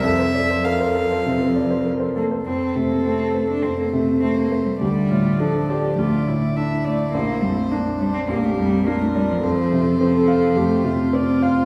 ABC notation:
X:1
M:4/4
L:1/16
Q:1/4=104
K:F
V:1 name="Violin"
e4 f8 z4 | A8 c4 c4 | d8 d4 e2 d2 | c8 B4 B4 |
c12 d2 c2 |]
V:2 name="Viola"
A4 A8- A2 z2 | A16 | G2 F2 A2 G2 F2 E6- | E4 D4 G4 F4 |
A8 G2 F6 |]
V:3 name="Grand piano"
F,, c d c B c A c C, c d c B c A c | F,,2 C,2 A,2 c2 F,,2 C,2 A,2 c2 | D,,2 A,,2 D2 d2 D,,2 A,,2 D2 d2 | B,,,2 F,,2 D2 d2 B,,,2 F,,2 D2 d2 |
F,,2 C,2 C2 f2 F,,2 C,2 C2 f2 |]
V:4 name="Cello"
F,4 F,8- F,2 B,2 | C2 A, B, C2 A, D C B, A,2 C B, A, G, | G,4 F,4 A,4 z2 A,2 | B,2 G, A, B,2 G, C B, A, G,2 B, A, G, F, |
F,4 F,4 A,4 z4 |]